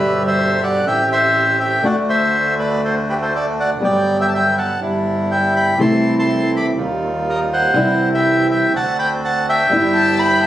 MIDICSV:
0, 0, Header, 1, 6, 480
1, 0, Start_track
1, 0, Key_signature, 1, "major"
1, 0, Tempo, 491803
1, 1788, Time_signature, 4, 2, 24, 8
1, 10216, End_track
2, 0, Start_track
2, 0, Title_t, "Violin"
2, 0, Program_c, 0, 40
2, 9711, Note_on_c, 0, 81, 83
2, 9954, Note_on_c, 0, 83, 83
2, 9969, Note_off_c, 0, 81, 0
2, 10183, Note_off_c, 0, 83, 0
2, 10216, End_track
3, 0, Start_track
3, 0, Title_t, "Bandoneon"
3, 0, Program_c, 1, 23
3, 0, Note_on_c, 1, 71, 64
3, 0, Note_on_c, 1, 76, 78
3, 221, Note_off_c, 1, 76, 0
3, 223, Note_off_c, 1, 71, 0
3, 268, Note_on_c, 1, 76, 81
3, 269, Note_on_c, 1, 72, 64
3, 585, Note_off_c, 1, 72, 0
3, 616, Note_on_c, 1, 78, 71
3, 619, Note_off_c, 1, 76, 0
3, 621, Note_on_c, 1, 74, 53
3, 830, Note_off_c, 1, 74, 0
3, 849, Note_on_c, 1, 76, 60
3, 850, Note_off_c, 1, 78, 0
3, 855, Note_on_c, 1, 79, 77
3, 1063, Note_off_c, 1, 76, 0
3, 1066, Note_off_c, 1, 79, 0
3, 1093, Note_on_c, 1, 76, 79
3, 1099, Note_on_c, 1, 72, 64
3, 1530, Note_off_c, 1, 72, 0
3, 1548, Note_off_c, 1, 76, 0
3, 1563, Note_on_c, 1, 76, 55
3, 1564, Note_on_c, 1, 79, 67
3, 1779, Note_off_c, 1, 76, 0
3, 1803, Note_off_c, 1, 79, 0
3, 1811, Note_on_c, 1, 78, 71
3, 1812, Note_on_c, 1, 74, 52
3, 1914, Note_off_c, 1, 74, 0
3, 1914, Note_off_c, 1, 78, 0
3, 2039, Note_on_c, 1, 72, 62
3, 2045, Note_on_c, 1, 76, 81
3, 2482, Note_off_c, 1, 72, 0
3, 2486, Note_off_c, 1, 76, 0
3, 2528, Note_on_c, 1, 71, 53
3, 2532, Note_on_c, 1, 74, 67
3, 2744, Note_off_c, 1, 71, 0
3, 2747, Note_off_c, 1, 74, 0
3, 2772, Note_on_c, 1, 69, 49
3, 2782, Note_on_c, 1, 72, 67
3, 2876, Note_off_c, 1, 69, 0
3, 2884, Note_off_c, 1, 72, 0
3, 3022, Note_on_c, 1, 71, 65
3, 3024, Note_on_c, 1, 67, 47
3, 3070, Note_off_c, 1, 71, 0
3, 3071, Note_off_c, 1, 67, 0
3, 3138, Note_on_c, 1, 69, 50
3, 3147, Note_on_c, 1, 72, 60
3, 3240, Note_off_c, 1, 69, 0
3, 3255, Note_off_c, 1, 72, 0
3, 3269, Note_on_c, 1, 69, 49
3, 3276, Note_on_c, 1, 74, 65
3, 3370, Note_off_c, 1, 69, 0
3, 3376, Note_off_c, 1, 74, 0
3, 3510, Note_on_c, 1, 74, 50
3, 3515, Note_on_c, 1, 78, 65
3, 3612, Note_off_c, 1, 74, 0
3, 3616, Note_off_c, 1, 78, 0
3, 3748, Note_on_c, 1, 74, 56
3, 3751, Note_on_c, 1, 79, 69
3, 4074, Note_off_c, 1, 74, 0
3, 4076, Note_off_c, 1, 79, 0
3, 4102, Note_on_c, 1, 76, 55
3, 4116, Note_on_c, 1, 79, 74
3, 4159, Note_off_c, 1, 76, 0
3, 4166, Note_off_c, 1, 79, 0
3, 4175, Note_on_c, 1, 81, 59
3, 4234, Note_off_c, 1, 81, 0
3, 4236, Note_on_c, 1, 76, 59
3, 4249, Note_on_c, 1, 79, 74
3, 4440, Note_off_c, 1, 76, 0
3, 4447, Note_off_c, 1, 79, 0
3, 4466, Note_on_c, 1, 78, 50
3, 4478, Note_on_c, 1, 81, 65
3, 4684, Note_off_c, 1, 78, 0
3, 4690, Note_off_c, 1, 81, 0
3, 5187, Note_on_c, 1, 79, 62
3, 5195, Note_on_c, 1, 76, 47
3, 5408, Note_off_c, 1, 76, 0
3, 5421, Note_off_c, 1, 79, 0
3, 5428, Note_on_c, 1, 83, 74
3, 5436, Note_on_c, 1, 79, 51
3, 5644, Note_off_c, 1, 83, 0
3, 5648, Note_off_c, 1, 79, 0
3, 5670, Note_on_c, 1, 84, 74
3, 5681, Note_on_c, 1, 81, 63
3, 5995, Note_off_c, 1, 84, 0
3, 6001, Note_off_c, 1, 81, 0
3, 6040, Note_on_c, 1, 81, 61
3, 6043, Note_on_c, 1, 84, 81
3, 6358, Note_off_c, 1, 81, 0
3, 6360, Note_off_c, 1, 84, 0
3, 6406, Note_on_c, 1, 83, 59
3, 6413, Note_on_c, 1, 86, 70
3, 6504, Note_off_c, 1, 83, 0
3, 6510, Note_off_c, 1, 86, 0
3, 7119, Note_on_c, 1, 70, 53
3, 7124, Note_on_c, 1, 75, 68
3, 7217, Note_off_c, 1, 70, 0
3, 7222, Note_off_c, 1, 75, 0
3, 7349, Note_on_c, 1, 72, 58
3, 7353, Note_on_c, 1, 78, 81
3, 7893, Note_off_c, 1, 72, 0
3, 7896, Note_off_c, 1, 78, 0
3, 7948, Note_on_c, 1, 79, 88
3, 7950, Note_on_c, 1, 76, 67
3, 8268, Note_off_c, 1, 79, 0
3, 8269, Note_off_c, 1, 76, 0
3, 8303, Note_on_c, 1, 76, 63
3, 8311, Note_on_c, 1, 79, 75
3, 8513, Note_off_c, 1, 76, 0
3, 8518, Note_off_c, 1, 79, 0
3, 8548, Note_on_c, 1, 78, 69
3, 8551, Note_on_c, 1, 81, 92
3, 8756, Note_off_c, 1, 78, 0
3, 8758, Note_off_c, 1, 81, 0
3, 8775, Note_on_c, 1, 83, 87
3, 8776, Note_on_c, 1, 79, 71
3, 8879, Note_off_c, 1, 83, 0
3, 8880, Note_off_c, 1, 79, 0
3, 9023, Note_on_c, 1, 81, 80
3, 9029, Note_on_c, 1, 78, 62
3, 9236, Note_off_c, 1, 81, 0
3, 9239, Note_off_c, 1, 78, 0
3, 9265, Note_on_c, 1, 76, 70
3, 9265, Note_on_c, 1, 79, 84
3, 10216, Note_off_c, 1, 76, 0
3, 10216, Note_off_c, 1, 79, 0
3, 10216, End_track
4, 0, Start_track
4, 0, Title_t, "Bandoneon"
4, 0, Program_c, 2, 23
4, 0, Note_on_c, 2, 55, 57
4, 0, Note_on_c, 2, 62, 52
4, 0, Note_on_c, 2, 67, 60
4, 786, Note_off_c, 2, 55, 0
4, 789, Note_off_c, 2, 62, 0
4, 790, Note_off_c, 2, 67, 0
4, 832, Note_on_c, 2, 57, 60
4, 838, Note_on_c, 2, 60, 54
4, 839, Note_on_c, 2, 67, 61
4, 1740, Note_off_c, 2, 57, 0
4, 1743, Note_off_c, 2, 60, 0
4, 1744, Note_off_c, 2, 67, 0
4, 1789, Note_on_c, 2, 57, 55
4, 1791, Note_on_c, 2, 62, 53
4, 1793, Note_on_c, 2, 66, 62
4, 3624, Note_off_c, 2, 57, 0
4, 3625, Note_off_c, 2, 62, 0
4, 3626, Note_off_c, 2, 66, 0
4, 3720, Note_on_c, 2, 55, 53
4, 3723, Note_on_c, 2, 59, 47
4, 3726, Note_on_c, 2, 54, 55
4, 4642, Note_off_c, 2, 55, 0
4, 4644, Note_off_c, 2, 59, 0
4, 4645, Note_off_c, 2, 54, 0
4, 4687, Note_on_c, 2, 55, 52
4, 4690, Note_on_c, 2, 62, 53
4, 4690, Note_on_c, 2, 64, 62
4, 5603, Note_off_c, 2, 55, 0
4, 5604, Note_off_c, 2, 62, 0
4, 5604, Note_off_c, 2, 64, 0
4, 5650, Note_on_c, 2, 57, 52
4, 5653, Note_on_c, 2, 64, 60
4, 5654, Note_on_c, 2, 60, 49
4, 6556, Note_off_c, 2, 57, 0
4, 6557, Note_off_c, 2, 64, 0
4, 6558, Note_off_c, 2, 60, 0
4, 6604, Note_on_c, 2, 55, 57
4, 6607, Note_on_c, 2, 63, 57
4, 6611, Note_on_c, 2, 65, 64
4, 7510, Note_off_c, 2, 55, 0
4, 7511, Note_off_c, 2, 63, 0
4, 7513, Note_off_c, 2, 65, 0
4, 7554, Note_on_c, 2, 60, 59
4, 7558, Note_on_c, 2, 64, 63
4, 8466, Note_off_c, 2, 60, 0
4, 8468, Note_off_c, 2, 64, 0
4, 8515, Note_on_c, 2, 60, 62
4, 8521, Note_on_c, 2, 62, 56
4, 8522, Note_on_c, 2, 66, 67
4, 9431, Note_off_c, 2, 60, 0
4, 9434, Note_off_c, 2, 62, 0
4, 9435, Note_off_c, 2, 66, 0
4, 9479, Note_on_c, 2, 59, 59
4, 9485, Note_on_c, 2, 64, 55
4, 9485, Note_on_c, 2, 67, 63
4, 10216, Note_off_c, 2, 59, 0
4, 10216, Note_off_c, 2, 64, 0
4, 10216, Note_off_c, 2, 67, 0
4, 10216, End_track
5, 0, Start_track
5, 0, Title_t, "Nylon-string guitar"
5, 0, Program_c, 3, 24
5, 0, Note_on_c, 3, 47, 63
5, 0, Note_on_c, 3, 50, 71
5, 0, Note_on_c, 3, 55, 74
5, 0, Note_on_c, 3, 67, 80
5, 823, Note_off_c, 3, 47, 0
5, 826, Note_off_c, 3, 50, 0
5, 831, Note_off_c, 3, 55, 0
5, 839, Note_off_c, 3, 67, 0
5, 1780, Note_on_c, 3, 50, 61
5, 1789, Note_on_c, 3, 57, 64
5, 1798, Note_on_c, 3, 62, 72
5, 1810, Note_on_c, 3, 66, 78
5, 3707, Note_off_c, 3, 50, 0
5, 3708, Note_off_c, 3, 57, 0
5, 3712, Note_on_c, 3, 55, 56
5, 3716, Note_off_c, 3, 62, 0
5, 3722, Note_off_c, 3, 66, 0
5, 3725, Note_on_c, 3, 59, 60
5, 4684, Note_off_c, 3, 59, 0
5, 5172, Note_off_c, 3, 55, 0
5, 5643, Note_on_c, 3, 48, 63
5, 5649, Note_on_c, 3, 52, 72
5, 5659, Note_on_c, 3, 57, 75
5, 5668, Note_on_c, 3, 60, 74
5, 5674, Note_on_c, 3, 64, 74
5, 6590, Note_off_c, 3, 48, 0
5, 6593, Note_off_c, 3, 52, 0
5, 6598, Note_off_c, 3, 57, 0
5, 6603, Note_off_c, 3, 60, 0
5, 6606, Note_off_c, 3, 64, 0
5, 7547, Note_on_c, 3, 48, 72
5, 7555, Note_on_c, 3, 52, 70
5, 7566, Note_on_c, 3, 55, 72
5, 7580, Note_on_c, 3, 64, 85
5, 8501, Note_off_c, 3, 48, 0
5, 8505, Note_off_c, 3, 52, 0
5, 8511, Note_off_c, 3, 55, 0
5, 8517, Note_off_c, 3, 64, 0
5, 9463, Note_on_c, 3, 55, 68
5, 9481, Note_on_c, 3, 59, 75
5, 9498, Note_on_c, 3, 64, 78
5, 10216, Note_off_c, 3, 55, 0
5, 10216, Note_off_c, 3, 59, 0
5, 10216, Note_off_c, 3, 64, 0
5, 10216, End_track
6, 0, Start_track
6, 0, Title_t, "Double bass"
6, 0, Program_c, 4, 43
6, 0, Note_on_c, 4, 31, 70
6, 785, Note_off_c, 4, 31, 0
6, 827, Note_on_c, 4, 33, 62
6, 1738, Note_off_c, 4, 33, 0
6, 1784, Note_on_c, 4, 38, 64
6, 3622, Note_off_c, 4, 38, 0
6, 3713, Note_on_c, 4, 31, 67
6, 4639, Note_off_c, 4, 31, 0
6, 4681, Note_on_c, 4, 31, 63
6, 5600, Note_off_c, 4, 31, 0
6, 5641, Note_on_c, 4, 36, 74
6, 6551, Note_off_c, 4, 36, 0
6, 6602, Note_on_c, 4, 39, 63
6, 7509, Note_off_c, 4, 39, 0
6, 7552, Note_on_c, 4, 36, 70
6, 8466, Note_off_c, 4, 36, 0
6, 8506, Note_on_c, 4, 38, 63
6, 9427, Note_off_c, 4, 38, 0
6, 9467, Note_on_c, 4, 31, 68
6, 10216, Note_off_c, 4, 31, 0
6, 10216, End_track
0, 0, End_of_file